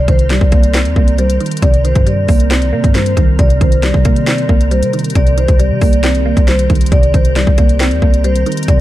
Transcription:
0.00 0.96 C3 medium
0.00 6.88 D#3 medium
0.00 6.88 C4 medium
0.00 6.88 A#4 medium
0.08 0.40 C2 loud
0.08 1.18 D#3 medium
0.08 0.25 C5 medium
0.08 kick loud
0.08 closed hi-hat medium
0.19 closed hi-hat medium
0.30 1.17 G3 loud
0.30 1.14 D5 medium
0.30 snare loud
0.30 closed hi-hat medium
0.41 0.87 C2 loud
0.41 kick loud
0.52 0.95 A#3 medium
0.52 kick loud
0.52 closed hi-hat medium
0.63 closed hi-hat medium
0.74 1.85 C4 loud
0.74 snare loud
0.74 closed hi-hat medium
0.85 0.96 D#2 loud
0.85 closed hi-hat medium
0.96 1.39 C2 loud
0.96 2.07 A#3 medium
0.96 kick medium
1.08 closed hi-hat medium
1.18 2.05 G3 medium
1.18 1.36 C5 medium
1.18 closed hi-hat medium
1.30 closed hi-hat medium
1.40 1.84 D#3 medium
1.40 closed hi-hat medium
1.46 closed hi-hat medium
1.51 closed hi-hat medium
1.57 closed hi-hat medium
1.62 1.94 C2 loud
1.62 2.73 C3 medium
1.62 1.79 D5 loud
1.62 kick loud
1.62 closed hi-hat medium
1.74 closed hi-hat medium
1.84 2.95 D#3 medium
1.84 2.02 C5 medium
1.84 closed hi-hat medium
1.95 2.27 G2 loud
1.95 kick loud
1.95 closed hi-hat medium
2.06 2.94 G3 medium
2.06 2.91 D5 medium
2.06 closed hi-hat medium
2.28 2.74 C2 loud
2.28 2.72 A#3 medium
2.28 kick loud
2.28 open hi-hat medium
2.40 closed hi-hat medium
2.51 3.39 C4 loud
2.51 snare loud
2.51 closed hi-hat medium
2.62 closed hi-hat medium
2.73 2.83 C3 loud
2.73 3.39 A#3 medium
2.84 3.16 G2 loud
2.84 kick loud
2.84 closed hi-hat medium
2.95 3.39 G3 medium
2.95 3.12 C5 medium
2.95 snare loud
2.95 closed hi-hat medium
3.06 closed hi-hat medium
3.17 3.38 C2 loud
3.17 3.39 D#3 medium
3.17 kick loud
3.17 closed hi-hat medium
3.39 3.60 C2 loud
3.39 4.49 C3 medium
3.39 8.64 G4 medium
3.39 3.56 D5 loud
3.39 kick loud
3.39 closed hi-hat medium
3.50 closed hi-hat medium
3.61 3.93 C2 loud
3.61 4.71 D#3 medium
3.61 3.78 C5 medium
3.61 kick loud
3.61 closed hi-hat medium
3.72 closed hi-hat medium
3.83 4.70 G3 medium
3.83 4.67 D5 medium
3.83 snare loud
3.83 closed hi-hat medium
3.94 4.47 C3 loud
3.94 kick loud
4.05 4.48 A#3 medium
4.05 kick loud
4.05 closed hi-hat medium
4.16 closed hi-hat medium
4.27 5.37 C4 loud
4.27 snare loud
4.27 closed hi-hat medium
4.38 closed hi-hat medium
4.49 4.84 C2 loud
4.49 5.60 A#3 medium
4.49 kick medium
4.61 closed hi-hat medium
4.71 5.58 G3 medium
4.71 4.88 C5 medium
4.71 closed hi-hat medium
4.82 5.14 C3 loud
4.82 closed hi-hat medium
4.93 5.36 D#3 medium
4.93 closed hi-hat medium
4.99 closed hi-hat medium
5.04 closed hi-hat medium
5.10 closed hi-hat medium
5.15 5.47 C2 loud
5.15 6.26 C3 loud
5.15 5.33 D5 loud
5.15 kick loud
5.15 closed hi-hat medium
5.27 closed hi-hat medium
5.38 6.48 D#3 medium
5.38 5.55 C5 medium
5.38 closed hi-hat medium
5.48 5.72 C2 loud
5.48 kick loud
5.48 closed hi-hat medium
5.59 6.46 G3 medium
5.59 6.44 D5 medium
5.59 closed hi-hat medium
5.71 5.81 C3 loud
5.81 6.35 C2 loud
5.81 6.24 A#3 medium
5.81 kick loud
5.81 open hi-hat medium
5.93 closed hi-hat medium
6.03 6.92 C4 loud
6.03 snare loud
6.03 closed hi-hat medium
6.15 closed hi-hat medium
6.26 6.92 A#3 medium
6.37 6.69 C2 loud
6.37 kick loud
6.37 closed hi-hat medium
6.47 6.92 G3 medium
6.47 6.65 C5 medium
6.47 snare loud
6.47 closed hi-hat medium
6.59 closed hi-hat medium
6.70 6.91 C2 loud
6.70 6.92 D#3 medium
6.70 kick loud
6.70 closed hi-hat medium
6.75 closed hi-hat medium
6.81 closed hi-hat medium
6.86 closed hi-hat medium
6.92 7.13 C2 loud
6.92 8.02 C3 medium
6.92 8.81 D#3 medium
6.92 8.81 C4 medium
6.92 8.81 A#4 medium
6.92 7.09 D5 loud
6.92 kick loud
6.92 closed hi-hat medium
7.03 closed hi-hat medium
7.14 7.46 C2 loud
7.14 8.24 D#3 medium
7.14 7.31 C5 medium
7.14 kick loud
7.14 closed hi-hat medium
7.25 closed hi-hat medium
7.36 8.23 G3 loud
7.36 8.20 D5 medium
7.36 snare medium
7.36 closed hi-hat medium
7.47 7.93 C2 loud
7.47 kick loud
7.58 8.01 A#3 medium
7.58 kick loud
7.58 closed hi-hat medium
7.69 closed hi-hat medium
7.80 8.81 C4 loud
7.80 snare loud
7.80 closed hi-hat medium
7.91 8.02 D#2 loud
7.91 closed hi-hat medium
8.02 8.44 C2 loud
8.02 8.81 A#3 medium
8.02 kick medium
8.14 closed hi-hat medium
8.24 8.81 G3 medium
8.24 8.41 C5 medium
8.24 closed hi-hat medium
8.36 closed hi-hat medium
8.46 8.81 D#3 medium
8.46 closed hi-hat medium
8.52 closed hi-hat medium
8.57 closed hi-hat medium
8.63 closed hi-hat medium
8.68 8.81 C2 loud
8.68 8.81 C3 loud
8.68 8.81 D5 loud
8.68 kick loud
8.68 closed hi-hat medium

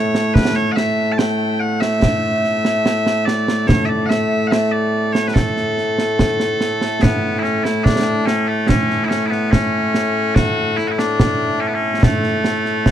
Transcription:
0.00 12.91 A2 medium
0.00 8.48 A3 medium
0.00 0.34 C#5 medium
0.15 snare medium
0.34 0.55 B4 loud
0.34 concert bass drum medium
0.34 snare loud
0.55 0.72 C#5 loud
0.72 0.76 F#5 loud
0.76 1.12 E5 loud
0.76 snare medium
1.12 1.18 A5 medium
1.18 1.60 G5 medium
1.18 snare loud
1.60 1.81 F#5 medium
1.81 3.25 E5 loud
1.81 snare medium
2.02 concert bass drum medium
2.02 snare loud
2.44 snare soft
2.65 snare medium
2.86 snare medium
3.06 snare medium
3.25 3.67 D5 loud
3.25 snare medium
3.48 snare medium
3.67 3.85 C#5 loud
3.67 concert bass drum medium
3.67 snare loud
3.85 4.06 D5 medium
3.85 3.89 E5 medium
4.06 4.47 E5 medium
4.06 4.09 F#5 medium
4.10 snare medium
4.47 4.51 F#5 loud
4.51 4.71 E5 loud
4.51 snare medium
4.71 5.13 D5 medium
5.13 5.27 C#5 medium
5.13 snare medium
5.27 5.34 B4 medium
5.34 7.02 A4 loud
5.34 concert bass drum medium
5.34 snare medium
5.57 snare soft
5.78 snare soft
5.98 snare medium
6.19 concert bass drum soft
6.19 snare loud
6.40 snare medium
6.61 snare medium
6.81 snare medium
7.02 7.39 B3 medium
7.02 concert bass drum medium
7.02 snare loud
7.39 7.64 C#4 medium
7.39 7.43 E4 medium
7.44 snare soft
7.64 7.84 E4 medium
7.64 snare medium
7.84 8.26 D4 medium
7.84 concert bass drum medium
7.84 snare medium
8.26 8.48 C#4 medium
8.26 snare medium
8.48 8.68 A3 medium
8.68 9.04 C#4 loud
8.68 concert bass drum medium
8.68 snare loud
8.90 snare soft
9.04 9.09 E4 medium
9.09 9.26 C#4 medium
9.09 snare medium
9.26 9.51 B3 medium
9.26 9.30 E4 medium
9.32 snare soft
9.51 10.35 C#4 medium
9.51 concert bass drum soft
9.51 snare medium
9.95 snare medium
10.35 10.77 F#4 loud
10.35 concert bass drum medium
10.35 snare medium
10.77 10.88 E4 loud
10.77 snare soft
10.88 10.99 E4 medium
10.88 10.91 F#4 medium
10.99 11.61 D4 medium
10.99 snare medium
11.20 concert bass drum medium
11.20 snare loud
11.61 11.68 C#4 medium
11.68 11.75 B3 medium
11.75 12.03 C#4 medium
12.03 12.91 A3 medium
12.03 concert bass drum medium
12.03 snare loud
12.23 snare soft
12.44 snare medium
12.65 snare soft
12.86 concert bass drum medium
12.86 snare medium

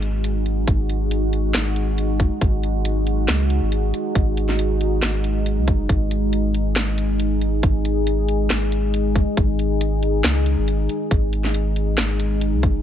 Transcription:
0.00 0.66 G#1 medium
0.00 12.82 G#3 medium
0.00 12.82 D#4 medium
0.00 5.88 F#4 medium
0.00 closed hi-hat soft
0.24 closed hi-hat medium
0.46 closed hi-hat soft
0.67 1.53 G#1 medium
0.67 kick loud
0.67 closed hi-hat medium
0.89 closed hi-hat medium
1.11 closed hi-hat medium
1.33 closed hi-hat medium
1.54 2.21 G#1 medium
1.54 snare loud
1.54 closed hi-hat medium
1.76 closed hi-hat soft
1.98 closed hi-hat medium
2.20 2.30 F#1 medium
2.20 kick loud
2.20 closed hi-hat medium
2.41 3.27 G#1 loud
2.41 kick loud
2.41 closed hi-hat medium
2.63 closed hi-hat medium
2.85 closed hi-hat medium
3.07 closed hi-hat soft
3.28 3.60 C#2 loud
3.28 snare loud
3.28 closed hi-hat medium
3.50 closed hi-hat medium
3.62 3.92 G#1 loud
3.72 closed hi-hat medium
3.94 closed hi-hat medium
4.15 5.01 G#1 medium
4.15 kick loud
4.15 closed hi-hat medium
4.37 closed hi-hat medium
4.49 snare soft
4.59 closed hi-hat medium
4.81 closed hi-hat medium
5.02 5.59 G#1 medium
5.02 snare loud
5.02 closed hi-hat medium
5.24 closed hi-hat medium
5.46 closed hi-hat medium
5.58 5.69 C#2 loud
5.68 5.88 F#1 loud
5.68 kick medium
5.68 closed hi-hat medium
5.89 7.62 G#1 medium
5.89 12.82 G#4 medium
5.89 kick loud
5.89 closed hi-hat medium
6.11 closed hi-hat medium
6.33 closed hi-hat medium
6.55 closed hi-hat medium
6.76 snare loud
6.76 closed hi-hat medium
6.98 closed hi-hat medium
7.20 closed hi-hat medium
7.41 closed hi-hat medium
7.63 8.49 G#1 medium
7.63 kick loud
7.63 closed hi-hat medium
7.85 closed hi-hat medium
8.07 closed hi-hat medium
8.29 closed hi-hat medium
8.50 9.17 G#1 medium
8.50 snare loud
8.50 closed hi-hat medium
8.72 closed hi-hat medium
8.94 closed hi-hat medium
9.16 9.26 F#1 loud
9.16 kick loud
9.16 closed hi-hat medium
9.37 10.23 G#1 loud
9.37 kick loud
9.37 closed hi-hat medium
9.59 closed hi-hat medium
9.81 closed hi-hat medium
10.03 closed hi-hat soft
10.24 10.56 C#2 medium
10.24 snare loud
10.24 closed hi-hat medium
10.46 closed hi-hat medium
10.58 10.88 G#1 loud
10.68 closed hi-hat medium
10.89 closed hi-hat soft
11.11 11.97 G#1 medium
11.11 kick loud
11.11 closed hi-hat medium
11.33 closed hi-hat soft
11.44 snare soft
11.54 closed hi-hat medium
11.76 closed hi-hat soft
11.98 12.55 G#1 medium
11.98 snare loud
11.98 closed hi-hat medium
12.20 closed hi-hat medium
12.41 closed hi-hat medium
12.53 12.65 C#2 loud
12.63 12.82 F#1 loud
12.63 kick loud
12.63 closed hi-hat medium

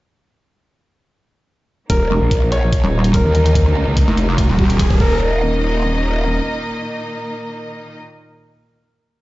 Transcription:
1.90 2.09 D#1 medium
1.90 4.97 D#3 medium
1.90 4.97 A#3 medium
1.90 4.97 D#4 medium
1.90 2.44 A#4 loud
1.90 kick medium
1.90 closed hi-hat medium
1.90 riser medium
2.11 2.20 F1 medium
2.22 2.82 A#1 loud
2.31 kick medium
2.31 closed hi-hat medium
2.52 3.06 C#5 medium
2.52 closed hi-hat medium
2.73 kick medium
2.73 closed hi-hat medium
2.84 3.23 D#1 medium
3.04 closed hi-hat medium
3.14 4.99 A#4 medium
3.14 kick loud
3.14 closed hi-hat medium
3.25 3.68 D#2 medium
3.35 closed hi-hat medium
3.46 closed hi-hat medium
3.55 kick loud
3.55 closed hi-hat medium
3.68 3.85 D2 medium
3.87 4.06 C#2 loud
3.97 kick loud
3.97 closed hi-hat medium
4.08 4.47 F1 loud
4.17 closed hi-hat medium
4.38 kick loud
4.38 closed hi-hat medium
4.49 4.89 D#1 loud
4.59 kick loud
4.70 closed hi-hat medium
4.79 kick loud
4.79 closed hi-hat medium
4.90 5.00 D#1 loud
4.90 kick loud
5.00 6.41 D#1 loud
5.00 7.98 A#2 medium
5.00 7.98 D#3 medium
5.00 7.98 A#3 medium
5.00 7.98 D#4 medium
5.00 7.98 A#4 medium
5.00 7.98 D#5 medium
5.00 kick loud

